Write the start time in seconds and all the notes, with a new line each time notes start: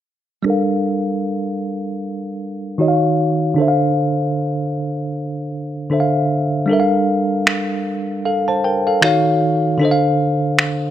0.43 G3 D4 A4
0.48 A#4 F5
2.78 D#3 D#4 F#4 C#5 D#5
2.88 F5
3.54 D3 D4 A4
3.60 C5 E5
3.68 F5
5.90 D3 D4 A4 C5 E5
6.00 F5
6.66 G3 D4 A4
6.71 A#4 E5
6.80 F5
7.47 finger snap
8.25 A4 F5
8.48 C5 A5
8.64 A#4 G5
8.87 A4 F5
9.02 D#3 D#4 F#4 C#5 F5, finger snap
9.78 D3 D4 A4
9.83 C5 D#5
9.91 F5
10.59 finger snap